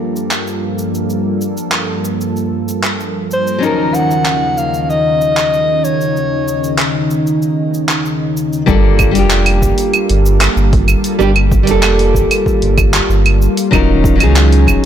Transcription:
0.00 3.58 G2 medium
0.00 3.58 F3 medium
0.00 3.57 G3 medium
0.00 3.58 A#3 medium
0.00 3.58 D4 medium
0.00 3.59 F4 medium
0.00 3.58 A4 medium
0.00 3.61 A4 medium
0.16 cabasa medium
0.31 clap medium
0.31 cabasa soft
0.47 cabasa soft
0.78 cabasa medium
0.95 cabasa soft
1.10 cabasa soft
1.41 cabasa medium
1.57 cabasa soft
1.72 clap medium
1.72 cabasa soft
2.05 cabasa medium
2.21 cabasa soft
2.37 cabasa soft
2.68 cabasa medium
2.84 clap medium
2.84 cabasa soft
3.00 cabasa soft
3.31 3.66 C5 medium
3.31 cabasa medium
3.47 cabasa soft
3.58 8.64 C#3 medium
3.58 8.62 F#3 medium
3.58 8.63 C#4 medium
3.58 8.64 D#4 medium
3.63 8.64 D#2 medium
3.63 8.64 D#3 medium
3.63 8.65 F3 medium
3.63 8.64 D#4 medium
3.63 3.96 A#4 medium
3.63 8.66 A#4 medium
3.63 cabasa soft
3.94 4.59 F#5 loud
3.94 cabasa medium
4.11 cabasa soft
4.26 clap medium
4.26 cabasa soft
4.58 4.82 F5 medium
4.58 cabasa medium
4.74 cabasa soft
4.82 4.92 F5 medium
4.90 5.86 D#5 loud
4.90 cabasa soft
5.21 cabasa medium
5.37 clap medium
5.37 cabasa soft
5.54 cabasa soft
5.84 6.79 C#5 medium
5.84 cabasa medium
6.01 cabasa soft
6.17 cabasa soft
6.48 cabasa medium
6.64 cabasa soft
6.78 clap medium
6.78 cabasa soft
7.11 cabasa medium
7.27 cabasa soft
7.42 cabasa soft
7.74 cabasa medium
7.89 clap medium
7.89 cabasa soft
8.05 cabasa soft
8.37 cabasa medium
8.53 cabasa soft
8.66 9.17 G1 medium
8.66 9.10 G3 medium
8.66 13.69 G3 medium
8.66 9.11 A#3 medium
8.66 13.69 A#3 medium
8.66 9.11 D4 medium
8.66 14.85 F4 medium
8.66 9.12 F4 medium
8.66 13.69 A4 medium
8.66 9.12 A4 loud
8.66 kick loud
8.66 cabasa soft
8.99 kick medium
8.99 cabasa medium
8.99 claves medium
9.11 9.64 F1 medium
9.11 11.14 G3 medium
9.11 11.15 A#3 medium
9.11 11.16 D4 medium
9.15 11.17 F4 medium
9.15 11.18 G4 medium
9.15 open hi-hat medium
9.15 cabasa soft
9.31 clap medium
9.31 cabasa soft
9.46 open hi-hat soft
9.46 claves medium
9.62 9.73 G1 loud
9.62 kick medium
9.62 cabasa medium
9.78 open hi-hat medium
9.78 cabasa soft
9.94 cabasa soft
9.94 claves medium
10.09 10.49 G1 medium
10.09 open hi-hat soft
10.26 cabasa medium
10.41 clap medium
10.41 open hi-hat medium
10.41 cabasa soft
10.41 claves medium
10.56 10.96 G1 medium
10.56 cabasa soft
10.73 kick loud
10.73 open hi-hat soft
10.88 cabasa medium
10.88 claves medium
11.04 open hi-hat medium
11.04 cabasa soft
11.19 11.69 G1 medium
11.19 11.30 G3 loud
11.19 11.30 A#3 medium
11.19 11.30 D4 medium
11.19 11.31 G4 loud
11.19 cabasa soft
11.36 claves medium
11.52 kick loud
11.52 cabasa medium
11.63 13.67 G3 medium
11.63 13.68 A#3 medium
11.63 13.69 D4 medium
11.67 12.16 F1 medium
11.67 11.70 F4 medium
11.67 13.71 A4 loud
11.67 open hi-hat medium
11.67 cabasa soft
11.83 clap medium
11.83 cabasa soft
11.83 claves medium
11.99 open hi-hat soft
12.15 12.26 G1 loud
12.15 kick medium
12.15 cabasa medium
12.31 open hi-hat medium
12.31 cabasa soft
12.31 claves medium
12.46 kick medium
12.46 cabasa soft
12.62 13.01 G1 medium
12.62 open hi-hat soft
12.78 kick loud
12.78 cabasa medium
12.78 claves medium
12.94 clap medium
12.94 open hi-hat medium
12.94 cabasa soft
13.09 13.49 G1 medium
13.09 cabasa soft
13.26 open hi-hat soft
13.26 claves medium
13.42 cabasa medium
13.57 open hi-hat medium
13.57 cabasa soft
13.71 14.22 D#1 loud
13.71 14.85 D#3 medium
13.71 14.14 F#3 medium
13.71 14.85 F#3 medium
13.71 14.16 C#4 medium
13.71 14.85 C#4 medium
13.71 14.16 D#4 medium
13.71 14.17 F4 medium
13.71 14.17 A#4 loud
13.71 kick loud
13.71 cabasa soft
13.71 claves medium
14.04 kick loud
14.04 cabasa medium
14.15 14.85 F#3 medium
14.15 14.85 C#4 medium
14.15 14.85 D#4 medium
14.20 14.69 C#2 medium
14.20 14.85 F4 medium
14.20 14.85 G#4 medium
14.20 open hi-hat medium
14.20 cabasa soft
14.20 claves medium
14.36 clap medium
14.36 cabasa soft
14.52 open hi-hat soft
14.67 14.78 D#1 loud
14.67 kick medium
14.67 cabasa medium
14.67 claves medium

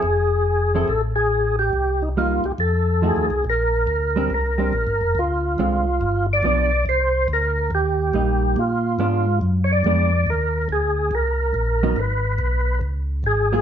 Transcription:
0.00 0.85 F1 medium
0.00 0.93 G#4 medium
0.75 0.88 F3 medium
0.75 0.88 C4 medium
0.75 0.88 E4 medium
0.75 0.89 A4 medium
0.88 1.70 A1 medium
0.88 1.02 A4 medium
1.16 1.56 G#4 loud
1.59 2.03 G4 loud
1.73 2.40 C2 medium
2.02 2.09 D#4 medium
2.17 2.42 G3 medium
2.17 2.42 A#3 medium
2.17 2.43 D#4 medium
2.17 2.46 F4 medium
2.44 2.52 C2 soft
2.44 2.52 G4 medium
2.58 3.12 F2 medium
2.58 3.26 A4 medium
3.02 3.27 F3 medium
3.02 3.28 A3 medium
3.02 3.28 D#4 medium
3.02 3.28 F#4 medium
3.07 3.45 G#4 medium
3.16 3.30 D#2 medium
3.30 3.44 C2 medium
3.45 3.86 A#1 medium
3.50 4.33 A#4 medium
3.87 4.29 D2 medium
4.16 4.29 G3 medium
4.16 4.30 C4 medium
4.16 4.30 D4 medium
4.30 4.72 C2 medium
4.34 5.20 A#4 medium
4.58 4.72 G3 medium
4.58 4.72 C4 medium
4.58 4.72 D4 medium
4.73 4.87 A#1 medium
4.87 5.01 G1 medium
5.01 5.15 F1 medium
5.15 5.57 D2 medium
5.15 6.26 F4 medium
5.58 6.00 C2 medium
5.58 5.84 D3 medium
5.58 5.84 G#3 medium
5.58 5.84 C4 medium
5.58 5.84 F4 medium
6.01 6.42 G1 medium
6.33 6.85 D5 loud
6.43 6.85 B1 medium
6.43 6.69 F3 medium
6.43 6.69 B3 medium
6.43 6.70 D4 medium
6.86 7.27 C2 medium
6.86 7.27 C5 loud
7.28 7.70 D2 loud
7.33 7.71 A#4 medium
7.71 8.12 D#2 medium
7.75 8.61 G4 medium
8.13 8.55 A#1 loud
8.13 8.57 G3 medium
8.13 8.57 A#3 medium
8.13 8.58 D#4 medium
8.56 8.98 A#2 medium
8.56 9.39 F4 medium
8.99 9.40 G#2 medium
8.99 9.24 G#3 medium
8.99 9.25 B3 medium
8.99 9.25 D4 medium
9.41 9.83 F#2 medium
9.64 9.71 C#5 medium
9.72 10.30 D5 loud
9.84 10.26 F2 medium
9.84 10.10 G#3 medium
9.84 10.10 B3 medium
9.84 10.11 D4 medium
10.27 10.68 D#2 medium
10.27 10.68 A#4 medium
10.69 11.11 D2 medium
10.69 11.15 G#4 medium
11.11 11.53 C2 medium
11.11 12.01 A#4 medium
11.54 11.96 A#1 medium
11.83 11.96 F#3 medium
11.83 11.96 B3 medium
11.83 11.97 D#4 medium
11.96 12.38 G#1 medium
11.96 12.79 B4 medium
12.39 12.80 B1 medium
12.81 13.23 C#2 medium
13.24 13.62 G#1 medium
13.24 13.62 G#4 medium
13.52 13.62 F#3 medium
13.52 13.62 A#3 medium
13.52 13.62 F4 medium
13.52 13.62 G#4 medium

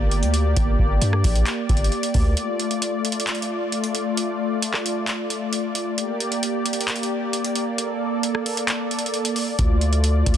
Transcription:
0.00 0.24 G1 loud
0.00 2.33 A#3 medium
0.00 2.33 G4 medium
0.00 5.94 D5 medium
0.11 closed hi-hat medium
0.23 0.55 D2 loud
0.23 closed hi-hat medium
0.34 closed hi-hat medium
0.57 0.78 G1 loud
0.57 kick loud
0.57 closed hi-hat medium
0.79 1.01 G1 loud
0.79 kick medium
1.02 1.23 G2 loud
1.02 closed hi-hat medium
1.13 cross-stick medium
1.24 1.46 A#1 loud
1.24 kick loud
1.24 closed hi-hat medium
1.24 open hi-hat medium
1.36 closed hi-hat medium
1.46 clap loud
1.46 closed hi-hat medium
1.69 1.91 G1 loud
1.69 kick loud
1.69 closed hi-hat medium
1.77 closed hi-hat medium
1.84 closed hi-hat medium
1.92 closed hi-hat soft
2.03 closed hi-hat medium
2.14 2.36 D2 loud
2.14 kick medium
2.14 open hi-hat medium
2.37 5.94 A3 medium
2.37 5.94 F4 medium
2.37 closed hi-hat medium
2.60 closed hi-hat medium
2.71 closed hi-hat medium
2.82 closed hi-hat medium
3.05 closed hi-hat medium
3.12 closed hi-hat medium
3.20 closed hi-hat medium
3.27 clap loud
3.27 closed hi-hat medium
3.35 closed hi-hat medium
3.42 closed hi-hat medium
3.72 closed hi-hat medium
3.84 closed hi-hat medium
3.95 closed hi-hat medium
4.17 closed hi-hat medium
4.62 closed hi-hat medium
4.74 cross-stick medium
4.74 clap medium
4.86 closed hi-hat medium
5.07 clap loud
5.07 closed hi-hat medium
5.30 closed hi-hat medium
5.53 closed hi-hat medium
5.75 closed hi-hat medium
5.98 9.55 A#3 medium
5.98 7.77 G4 medium
5.98 10.37 D5 medium
5.98 closed hi-hat medium
6.20 closed hi-hat medium
6.32 closed hi-hat medium
6.43 closed hi-hat loud
6.66 closed hi-hat medium
6.73 closed hi-hat medium
6.81 closed hi-hat medium
6.88 clap loud
6.88 closed hi-hat medium
6.96 closed hi-hat medium
7.03 closed hi-hat medium
7.33 closed hi-hat medium
7.45 closed hi-hat medium
7.55 closed hi-hat medium
7.78 9.57 A4 medium
7.78 closed hi-hat medium
8.23 closed hi-hat medium
8.35 cross-stick medium
8.46 closed hi-hat medium
8.46 open hi-hat medium
8.57 closed hi-hat medium
8.68 clap loud
8.68 closed hi-hat medium
8.91 closed hi-hat medium
8.99 closed hi-hat medium
9.06 closed hi-hat medium
9.14 closed hi-hat soft
9.25 closed hi-hat medium
9.36 open hi-hat medium
9.59 10.24 D2 loud
9.59 10.37 A3 medium
9.59 10.37 F4 medium
9.59 kick loud
9.59 closed hi-hat medium
9.81 closed hi-hat medium
9.93 closed hi-hat medium
10.04 closed hi-hat medium
10.26 10.37 D2 loud
10.26 kick loud
10.26 closed hi-hat medium
10.34 closed hi-hat medium

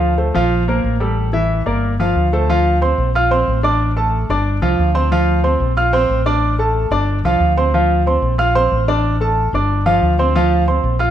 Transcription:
0.00 0.29 D2 medium
0.00 0.12 F3 medium
0.00 0.13 F4 medium
0.00 0.13 F5 medium
0.18 0.32 A3 medium
0.18 0.32 A4 medium
0.18 0.32 C5 medium
0.34 0.81 A#1 medium
0.34 0.62 F3 medium
0.34 0.62 F4 medium
0.34 0.62 F5 medium
0.68 0.95 A#3 medium
0.68 0.95 A#4 medium
0.68 0.95 C5 medium
0.84 1.61 A1 medium
1.00 1.27 G3 medium
1.00 1.28 G4 medium
1.00 1.28 A4 medium
1.33 1.60 E3 medium
1.33 1.60 E4 medium
1.33 1.60 E5 medium
1.66 2.12 G1 medium
1.66 1.93 A#3 medium
1.66 1.93 A#4 medium
1.66 1.93 D5 medium
2.00 2.26 F3 medium
2.00 2.26 F4 medium
2.00 2.27 F5 medium
2.16 2.92 D2 medium
2.33 2.46 A3 medium
2.33 2.46 A4 medium
2.33 2.46 C5 medium
2.50 2.76 F3 medium
2.50 2.76 F4 medium
2.50 2.76 F5 medium
2.82 3.08 C4 medium
2.82 3.08 C5 medium
2.82 3.09 C6 medium
2.98 3.44 A#1 medium
3.15 3.28 F4 medium
3.15 3.28 F5 medium
3.15 3.29 F6 medium
3.31 3.58 C4 medium
3.31 3.58 C5 medium
3.31 3.58 C6 medium
3.48 4.24 A1 medium
3.63 3.90 D4 medium
3.63 3.91 D5 medium
3.63 3.91 D6 medium
3.96 4.23 A3 medium
3.96 4.23 A4 medium
3.96 4.23 A5 medium
4.29 4.59 G1 medium
4.29 4.56 D4 medium
4.29 4.57 D5 medium
4.29 4.57 D6 medium
4.62 4.77 C2 medium
4.62 4.89 F3 medium
4.62 4.89 F4 loud
4.62 4.89 F5 medium
4.79 5.55 D2 loud
4.95 5.08 C4 medium
4.95 5.08 C5 medium
4.95 5.08 C6 medium
5.12 5.38 F3 medium
5.12 5.38 F4 medium
5.12 5.38 F5 loud
5.44 5.71 C4 medium
5.44 5.71 C5 medium
5.44 5.71 C6 medium
5.60 6.06 A#1 medium
5.77 5.90 F4 medium
5.77 5.90 F5 medium
5.77 5.90 F6 medium
5.93 6.20 C4 loud
5.93 6.20 C5 medium
5.93 6.20 C6 medium
6.09 6.85 A1 medium
6.26 6.53 D4 medium
6.26 6.53 D5 medium
6.26 6.53 D6 medium
6.59 6.85 A3 medium
6.59 6.86 A4 medium
6.59 6.86 A5 medium
6.91 7.21 G1 medium
6.91 7.18 D4 medium
6.91 7.18 D5 medium
6.91 7.18 D6 medium
7.24 7.39 C2 medium
7.24 7.51 F3 medium
7.24 7.51 F4 medium
7.24 7.52 F5 medium
7.40 8.16 D2 medium
7.57 7.70 C4 medium
7.57 7.71 C5 medium
7.57 7.71 C6 medium
7.74 8.00 F3 medium
7.74 8.00 F4 medium
7.74 8.01 F5 medium
8.06 8.33 C4 medium
8.06 8.33 C5 medium
8.06 8.33 C6 medium
8.22 8.68 A#1 medium
8.38 8.52 F4 medium
8.38 8.52 F5 medium
8.38 8.52 F6 medium
8.55 8.82 C4 medium
8.55 8.82 C5 medium
8.55 8.82 C6 medium
8.72 9.48 A1 loud
8.88 9.15 D4 medium
8.88 9.15 D5 medium
8.88 9.15 D6 medium
9.21 9.47 A3 medium
9.21 9.47 A4 medium
9.21 9.48 A5 medium
9.53 9.99 G1 loud
9.53 9.80 D4 medium
9.53 9.81 D5 medium
9.53 9.81 D6 medium
9.86 10.13 F3 medium
9.86 10.13 F4 medium
9.86 10.13 F5 medium
10.02 10.78 D2 medium
10.19 10.32 C4 medium
10.19 10.32 C5 medium
10.19 10.33 C6 medium
10.35 10.62 F3 loud
10.35 10.62 F4 medium
10.35 10.62 F5 medium
10.68 10.94 C4 medium
10.68 10.94 C5 medium
10.68 10.95 C6 medium
10.84 11.11 A#1 medium
10.99 11.11 F4 medium
10.99 11.11 F5 medium
10.99 11.11 F6 medium

